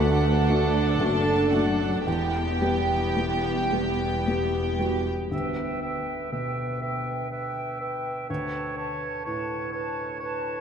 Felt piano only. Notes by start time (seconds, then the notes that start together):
Already playing: D2
0.00 A3 D4 F#4
0.49 A3 D4 F#4
1.00 A3 D4 F#4
1.53 A3 D4 F#4
2.07 E2
2.62 G3 B3 G4
3.16 G3 B3 G4
3.73 G3 B3 G4
4.27 G3 B3 G4
4.79 G3 B3 F#4
5.31 D2
6.32 B2
8.30 D2
9.26 A2